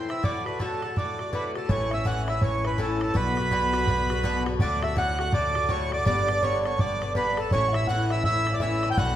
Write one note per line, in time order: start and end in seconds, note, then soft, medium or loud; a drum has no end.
0.00 0.10 C5 medium
0.09 0.23 E3 soft
0.09 0.24 C4 soft
0.09 0.23 E4 soft
0.09 0.24 E5 medium
0.09 bodhran medium
0.23 0.46 A2 medium
0.23 0.46 D3 medium
0.23 0.46 A3 medium
0.23 0.44 F#4 medium
0.23 0.45 D5 loud
0.23 bodhran medium
0.45 0.59 D3 soft
0.45 0.60 A3 soft
0.45 0.59 F#4 soft
0.45 0.59 B4 medium
0.45 bodhran medium
0.59 0.82 A2 medium
0.59 0.83 D3 medium
0.59 0.83 A3 medium
0.59 0.81 F#4 medium
0.59 0.97 A4 medium
0.59 bodhran medium
0.82 0.96 D3 soft
0.82 0.97 A3 soft
0.82 0.96 F#4 medium
0.82 bodhran medium
0.96 1.19 A2 medium
0.96 1.19 D3 soft
0.96 1.20 A3 medium
0.96 1.18 F#4 medium
0.96 1.52 D5 medium
0.96 bodhran medium
1.19 1.32 D3 soft
1.19 1.33 A3 soft
1.19 1.33 F#4 soft
1.19 bodhran medium
1.32 1.55 A2 medium
1.32 1.56 D3 medium
1.32 1.55 A3 medium
1.32 1.54 F#4 medium
1.32 1.53 B4 medium
1.32 1.44 B4 medium
1.32 bodhran medium
1.54 1.69 D3 soft
1.54 1.70 A3 medium
1.54 1.69 F#4 medium
1.54 1.69 A4 medium
1.54 1.70 A4 medium
1.54 bodhran medium
1.69 3.12 A1 medium
1.69 1.92 A2 medium
1.69 1.92 E3 medium
1.69 1.92 C#4 medium
1.69 1.90 E4 medium
1.69 1.92 C#5 medium
1.69 1.93 C#5 loud
1.69 bodhran medium
1.91 2.05 E3 soft
1.91 2.05 C#4 medium
1.91 2.05 E4 soft
1.91 2.04 E5 medium
1.91 2.06 E5 medium
1.91 bodhran medium
2.05 2.28 A2 medium
2.05 2.28 E3 medium
2.05 2.28 C#4 medium
2.05 2.26 E4 medium
2.05 2.27 F#5 medium
2.05 2.27 F#5 loud
2.05 bodhran medium
2.28 2.41 E3 soft
2.28 2.42 C#4 soft
2.28 2.42 E4 medium
2.28 2.42 E5 medium
2.28 2.43 E5 medium
2.28 bodhran medium
2.41 2.64 A2 medium
2.41 2.65 E3 medium
2.41 2.65 C#4 medium
2.41 2.63 E4 medium
2.41 2.65 C#5 medium
2.41 2.66 C#5 medium
2.41 bodhran medium
2.64 2.78 E3 soft
2.64 2.78 C#4 soft
2.64 2.78 E4 medium
2.64 2.79 B4 medium
2.64 2.80 B4 medium
2.64 bodhran medium
2.72 bodhran soft
2.78 3.01 A2 medium
2.78 3.01 E3 medium
2.78 3.01 C#4 medium
2.78 2.99 E4 medium
2.78 3.16 A4 medium
2.78 3.01 A4 medium
2.78 bodhran medium
3.01 3.15 E3 soft
3.01 3.15 C#4 medium
3.01 3.15 E4 medium
3.01 3.16 A4 medium
3.01 bodhran medium
3.08 bodhran soft
3.14 4.58 B1 medium
3.14 3.37 B2 medium
3.14 3.38 D3 medium
3.14 3.37 B3 medium
3.14 3.36 F#4 loud
3.14 4.42 B4 medium
3.14 4.43 B4 loud
3.14 bodhran medium
3.37 3.51 D3 soft
3.37 3.51 B3 soft
3.37 3.51 F#4 soft
3.37 bodhran medium
3.51 3.74 B2 medium
3.51 3.74 D3 medium
3.51 3.73 B3 medium
3.51 3.72 F#4 loud
3.51 bodhran medium
3.73 3.87 D3 medium
3.73 3.88 B3 medium
3.73 3.87 F#4 medium
3.73 bodhran medium
3.87 4.10 B2 medium
3.87 4.10 D3 medium
3.87 4.10 B3 medium
3.87 4.09 F#4 medium
3.87 bodhran medium
4.10 4.23 D3 medium
4.10 4.24 B3 medium
4.10 4.24 F#4 medium
4.10 bodhran medium
4.18 bodhran soft
4.23 4.46 B2 medium
4.23 4.47 D3 loud
4.23 4.46 B3 loud
4.23 4.45 F#4 loud
4.23 bodhran medium
4.46 4.60 D3 medium
4.46 4.61 B3 medium
4.46 4.60 F#4 medium
4.46 bodhran medium
4.53 bodhran soft
4.59 6.03 D2 medium
4.59 4.83 A2 medium
4.59 4.83 D3 medium
4.59 4.83 A3 medium
4.59 4.81 F#4 loud
4.59 4.84 D5 medium
4.59 4.82 D5 loud
4.59 bodhran medium
4.83 4.95 D3 soft
4.83 4.96 A3 medium
4.83 4.97 F#4 medium
4.83 4.96 E5 medium
4.83 4.98 E5 medium
4.83 bodhran medium
4.96 5.19 A2 medium
4.96 5.19 D3 medium
4.96 5.19 A3 medium
4.96 5.18 F#4 medium
4.96 5.19 F#5 loud
4.96 5.18 F#5 medium
4.96 bodhran medium
5.19 5.32 D3 soft
5.19 5.33 A3 medium
5.19 5.33 F#4 medium
5.19 5.34 F#5 medium
5.19 5.33 F#5 loud
5.19 bodhran medium
5.32 5.55 A2 medium
5.32 5.56 D3 medium
5.32 5.55 A3 medium
5.32 5.54 F#4 medium
5.32 5.71 D5 loud
5.32 5.71 D5 medium
5.32 bodhran medium
5.55 5.68 D3 soft
5.55 5.69 A3 soft
5.55 5.69 F#4 medium
5.55 bodhran medium
5.62 bodhran soft
5.69 5.92 A2 medium
5.69 5.92 D3 medium
5.69 5.92 A3 medium
5.69 5.90 F#4 medium
5.69 5.93 C#5 medium
5.69 5.91 C#5 loud
5.69 bodhran medium
5.91 6.05 D3 soft
5.91 6.06 A3 soft
5.91 6.06 F#4 medium
5.91 5.98 D5 medium
5.91 6.05 D5 loud
5.91 bodhran medium
5.99 bodhran soft
6.05 7.49 G1 medium
6.05 6.28 G2 medium
6.05 6.29 D3 medium
6.05 6.29 B3 medium
6.05 6.27 D4 loud
6.05 6.39 D5 medium
6.05 6.44 D5 loud
6.05 bodhran medium
6.28 6.42 D3 soft
6.28 6.43 B3 soft
6.28 6.42 D4 medium
6.28 bodhran medium
6.42 6.65 G2 medium
6.42 6.66 D3 medium
6.42 6.65 B3 medium
6.42 6.63 D4 medium
6.42 6.80 C#5 medium
6.42 6.64 C#5 loud
6.42 bodhran medium
6.65 6.78 D3 soft
6.65 6.79 B3 soft
6.65 6.79 D4 medium
6.65 6.80 C#5 medium
6.65 bodhran medium
6.78 7.01 G2 medium
6.78 7.02 D3 medium
6.78 7.02 B3 medium
6.78 7.00 D4 medium
6.78 7.13 D5 loud
6.78 bodhran medium
7.01 7.15 D3 soft
7.01 7.15 B3 medium
7.01 7.15 D4 medium
7.01 bodhran medium
7.09 bodhran soft
7.15 7.38 G2 medium
7.15 7.38 D3 medium
7.15 7.38 B3 medium
7.15 7.36 D4 medium
7.15 7.30 B4 medium
7.15 7.39 B4 loud
7.15 bodhran medium
7.37 7.52 D3 soft
7.37 7.52 B3 soft
7.37 7.52 D4 medium
7.37 7.50 A4 medium
7.37 7.51 A4 medium
7.37 bodhran medium
7.44 bodhran soft
7.51 8.95 A1 medium
7.51 7.75 A2 medium
7.51 7.75 E3 medium
7.51 7.75 C#4 medium
7.51 7.74 E4 medium
7.51 7.67 C#5 medium
7.51 7.75 C#5 loud
7.51 bodhran medium
7.68 7.74 F#5 medium
7.73 7.89 C#4 soft
7.73 7.88 E4 medium
7.73 7.88 E5 medium
7.73 7.87 E5 loud
7.73 bodhran medium
7.78 7.88 E3 soft
7.87 8.11 A2 medium
7.87 8.11 E3 medium
7.87 8.11 C#4 medium
7.87 8.10 E4 medium
7.87 8.11 F#5 medium
7.87 8.12 F#5 loud
7.87 bodhran medium
8.10 8.25 E3 medium
8.10 8.26 C#4 medium
8.10 8.25 E4 medium
8.10 8.22 E5 medium
8.10 8.23 E5 loud
8.10 bodhran medium
8.24 8.47 A2 medium
8.24 8.48 E3 medium
8.24 8.48 C#4 medium
8.24 8.51 E5 medium
8.24 8.55 E5 loud
8.24 bodhran medium
8.28 8.46 E4 medium
8.47 8.60 E3 soft
8.47 8.61 C#4 soft
8.47 8.61 E4 medium
8.47 bodhran medium
8.52 8.60 D5 medium
8.52 8.61 D5 medium
8.52 8.54 E5 medium
8.52 bodhran soft
8.60 8.84 A2 medium
8.60 8.84 E3 medium
8.60 8.84 C#4 medium
8.60 8.82 E4 medium
8.60 8.88 E5 medium
8.60 8.89 E5 loud
8.60 bodhran medium
8.83 8.98 E3 soft
8.83 8.98 C#4 medium
8.83 8.97 E4 medium
8.83 bodhran medium
8.89 8.97 G5 medium
8.89 8.97 G5 loud
8.89 bodhran soft
8.97 9.16 B1 medium
8.97 9.16 B2 medium
8.97 9.16 D3 medium
8.97 9.16 B3 medium
8.97 9.16 F#4 medium
8.97 9.16 F#5 medium
8.97 9.16 F#5 loud
8.97 bodhran medium